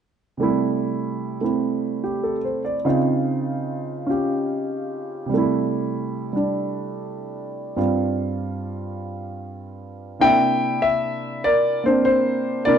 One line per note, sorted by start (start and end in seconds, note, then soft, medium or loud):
0.37 2.84 C3 soft
0.37 2.85 G3 soft
0.37 1.40 A3 soft
0.43 1.43 E4 medium
1.41 2.84 A3 soft
1.41 2.84 C4 soft
1.41 2.86 E4 soft
2.04 2.35 G4 soft
2.23 2.62 A4 soft
2.45 2.76 C5 soft
2.65 2.96 D5 soft
2.85 5.30 C#3 soft
2.85 5.30 C4 soft
2.85 5.31 D#4 soft
2.85 4.07 F4 medium
4.07 5.30 C#4 soft
4.07 5.31 F4 soft
4.07 5.32 G4 soft
5.26 7.74 C3 soft
5.26 6.31 G3 soft
5.34 7.77 A3 soft
5.34 7.79 E4 soft
6.33 7.75 G3 soft
6.33 7.77 D4 soft
7.76 10.21 G2 soft
7.76 10.21 G3 soft
7.76 10.22 C4 soft
7.76 10.22 F4 soft
10.19 12.64 C3 soft
10.19 11.82 A#3 soft
10.19 11.85 D4 soft
10.19 12.66 E4 medium
10.19 10.84 G5 loud
10.24 10.81 E5 medium
10.82 11.45 E5 medium
11.44 12.64 A#4 medium
11.44 11.83 D5 medium
11.84 12.65 A#3 soft
11.84 12.67 C4 soft
11.84 12.65 D4 soft
11.84 12.04 C5 medium
12.05 12.62 C5 medium
12.65 12.78 C3 soft
12.65 12.78 A#3 soft
12.65 12.78 D4 soft
12.65 12.78 E4 soft
12.65 12.78 A#4 medium
12.65 12.78 D5 medium